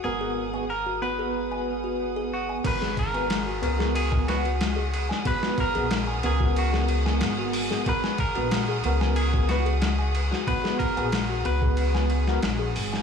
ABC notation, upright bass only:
X:1
M:4/4
L:1/16
Q:1/4=92
K:G#m
V:1 name="Upright bass" clef=bass
G,,,16 | G,,,6 C,,8- C,, z | z3 A,,,3 C,,6 G,,,3 z | z3 A,,,3 C,,8- C,, z |
z3 A,,,3 C,,6 A,,,2 G,,,2 |]